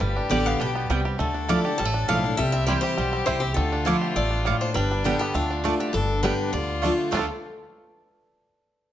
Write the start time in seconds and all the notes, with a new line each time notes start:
Already playing: D4 B4
0.00 G1 G2 G3 G4
0.16 D4
0.30 A1 D3 G3 B3 G4 D5 G5
0.46 B3 F5
0.60 B1 B2 D4 G5
0.75 B3
0.89 C2 C3 G3 B3 G4 D5 G5
1.05 G4
1.18 D2 D3 A3 A4
1.34 D4
1.48 F3 A3 D4 E4 A4 D5 F5 D6
1.64 D4 E4 G4
1.78 A1 A2 G3 A5
1.85 A3
1.94 D4
2.08 B1 F3 A3 D4 E4 A4 F5 D6
2.24 D4 E4
2.37 C2 C3 G3 G4 E5
2.52 C4 E5
2.67 E3 G3 C4 E4 C5 D5 G5
2.81 G4 C5
2.97 B1 B2 G3
3.13 C4
3.26 C2 C3 C4 E4 C5 G5
3.40 C4 G4
3.54 D2 D3 A3 F4 A4
3.72 D4
3.85 F3 A3 D4 E4 A4 C5 F5 D6
4.01 G4
4.16 A1 B2 A3 D5
4.31 D4
4.45 A2 D4 E4 A4 F5 D6
4.61 D4 C5
4.74 G1 G2 G3 D4 B4
4.91 D4
5.04 D3 G3 B3 G4 A4 D5 G5
5.19 B3 G4
5.34 D2 D3 A3 D4 F4
5.50 D4
5.64 D3 A3 D4 F4 D5 A5
5.80 D4 G4
5.93 G1 G2 D4 A4
6.23 D3 G3 B3 D4 G4 B4 D5 G5
6.53 D2 D3 F4 D5
6.82 D3 A3 D4 F4 D5 A5
7.11 D2 D3 A3 D4 F4 A4 D5 A5
7.17 F4 A4